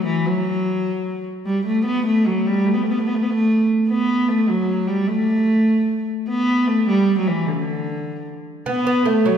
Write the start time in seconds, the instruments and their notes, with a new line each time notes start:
0.05 viola da gamba E3
0.27 viola da gamba F#3
1.46 viola da gamba G3
1.66 viola da gamba A3
1.86 viola da gamba B3
2.06 viola da gamba A3
2.26 viola da gamba F#3
2.47 viola da gamba G3
2.66 viola da gamba A3
2.74 viola da gamba B3
2.83 viola da gamba A3
2.91 viola da gamba B3
2.99 viola da gamba A3
3.07 viola da gamba B3
3.15 viola da gamba A3
3.23 viola da gamba B3
3.30 viola da gamba A3
3.88 viola da gamba B3
4.29 viola da gamba A3
4.49 viola da gamba F#3
4.87 viola da gamba G3
5.08 viola da gamba A3
6.28 viola da gamba B3
6.67 viola da gamba A3
6.88 viola da gamba G3
7.18 viola da gamba F#3
7.28 viola da gamba E3
7.46 viola da gamba D3
7.52 viola da gamba C#3
7.61 viola da gamba D3
8.66 lute B3, viola da gamba B3
8.87 lute B3
9.05 lute A3, viola da gamba A3
9.25 lute F#3, viola da gamba F#3